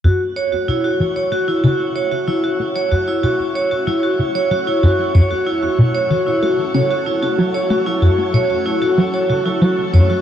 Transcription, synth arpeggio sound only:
X:1
M:4/4
L:1/8
Q:1/4=94
K:F#m
V:1 name="Synth arpeggio sound" clef=bass
F,, z B,, E, A, C, z F, | A, F,, B,, z F, C, F, F,, | F,, z B,, E, A, C, z F, | A, F,, B,, z F, C, F, F,, |]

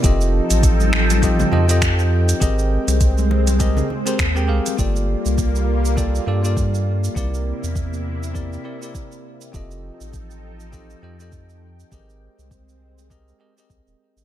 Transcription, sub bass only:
X:1
M:4/4
L:1/16
Q:"Swing 16ths" 1/4=101
K:Fmix
V:1 name="Sub bass" clef=bass
F,,,2 z A,,,6 z F,,4- F,, z | _A,,,2 z C,,6 z3 E,,2 C,, z | G,,,2 z C,,6 z G,,4- G,, z | C,,2 z =E,,6 z6 z |
F,,,2 z A,,,6 z F,,4- F,, z | _A,,,2 z C,,6 z3 C,, E,,, z A,,, |]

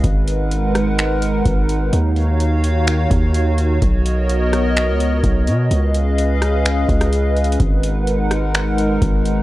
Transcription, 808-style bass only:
X:1
M:4/4
L:1/16
Q:1/4=127
K:G#dor
V:1 name="808-style bass" clef=bass
G,,,12 G,,,4 | D,,8- D,,2 D,,6 | B,,,8- B,,, C,,3 B,,,2 B,,2 | C,,8- C,,2 C,,6 |
G,,,12 G,,,4 |]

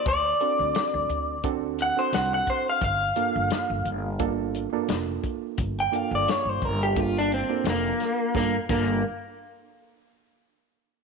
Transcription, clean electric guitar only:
X:1
M:4/4
L:1/16
Q:"Swing 16ths" 1/4=87
K:Gm
V:1 name="Clean electric guitar"
d8 z2 ^f c f f c =f | f12 z4 | z g f d ^c =c B G F D C2 B,4 | B,2 B,2 z12 |]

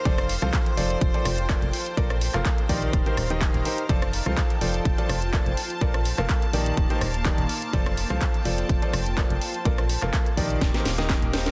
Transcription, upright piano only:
X:1
M:4/4
L:1/16
Q:"Swing 16ths" 1/4=125
K:Fmix
V:1 name="Upright piano"
[F,FAcd] z2 [F,FAcf]2 z [F,FAcd]3 [F,FAcd] z2 [B,FAcd] z3 | [B,FABd] z2 [B,FABf]2 z [E,EGBd]3 [E,EGBc] z [E,EGBe]3 [EGBc] z | [F,FAcd] z2 [F,FAcf]2 z [F,FAcd]3 [F,FAcd] z2 [B,FAcd] z3 | [B,FABd] z2 [B,FABf]2 z [E,EGBd]3 [E,EGBc] z2 [E,EGBd] z3 |
[F,FAcd] z2 [F,FAcf]2 z [F,FAcd]3 [F,FAcd] z2 [B,FAcd] z3 | [B,FABd] z2 [B,FABf]2 z [E,EGBd]3 [E,EGBc] z [E,EGBe]3 [EGBc] z |]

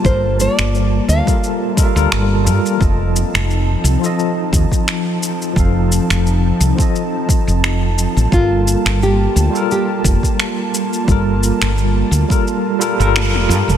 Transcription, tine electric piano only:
X:1
M:4/4
L:1/16
Q:"Swing 16ths" 1/4=87
K:Gm
V:1 name="Tine electric piano"
[G,FAB]6- [G,FAB] [G,FAB]3 [G,FAB] [G,FAB] z2 [G,FAB]2 | [F,FAe]6- [F,FAe] [F,FAe]8- [F,FAe] | [F,FAf]6- [F,FAf] [F,FAe]8- [F,FAe] | [G,FAB]6- [G,FAB] [G,FAB]8- [G,FAB] |
[G,FAB]6- [G,FAB] [G,FAB]3 [G,FAB] [G,FAB] z2 [G,FAB]2 |]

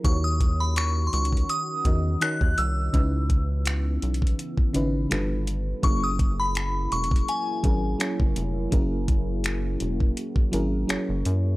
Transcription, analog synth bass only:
X:1
M:4/4
L:1/16
Q:"Swing 16ths" 1/4=83
K:F#mix
V:1 name="Analog synth bass" clef=bass
D,,6 C,,2 z2 E,,2 z D,, ^B,,,2 | C,,6 B,,,2 z2 G,,,2 =G,,,4 | F,,,6 E,,,2 z2 G,,,2 z F,,, ^E,,,2 | F,,,6 E,,,2 z2 G,,,2 F,,, F,,, F,,2 |]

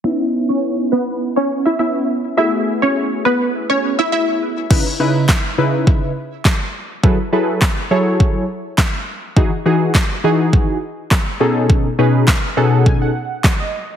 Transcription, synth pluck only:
X:1
M:4/4
L:1/16
Q:1/4=103
K:C#m
V:1 name="Synth pluck"
[Ee] z2 [Cc] z2 [B,B]2 z [Cc] z [Ee] [Ee]3 z | [Ee] z2 [Cc] z2 [B,B]2 z [Cc] z [Ee] [Ee]3 z | z16 | z16 |
z16 | z16 |]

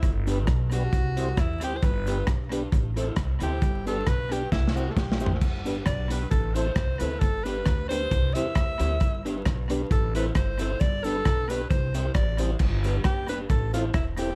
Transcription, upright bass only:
X:1
M:4/4
L:1/8
Q:"Swing" 1/4=134
K:G
V:1 name="Upright bass" clef=bass
G,,,2 B,,,2 C,,2 E,, D,, | G,,,2 B,,,2 A,,,2 C,, D,, | G,,,2 B,,,2 C,,2 B,,, A,,, | G,,,2 B,,,2 A,,,2 C,, D,, |
G,,,2 D,,2 C,, E,, D,, D,, | G,,,2 B,,,2 A,,,2 G,,,2 | G,,,2 B,,,2 C,,2 A,,,2 | G,,,2 F,,,2 A,,,2 E,,,2 |]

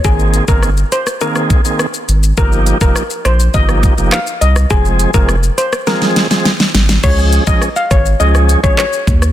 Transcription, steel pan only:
X:1
M:4/4
L:1/16
Q:1/4=103
K:Dblyd
V:1 name="Steel pan"
A2 z B z2 c z B3 z4 z | B2 z B z2 c z e3 z f z e z | A2 z B z2 c z B3 z4 z | d2 z e z f d z e z2 d d3 z |]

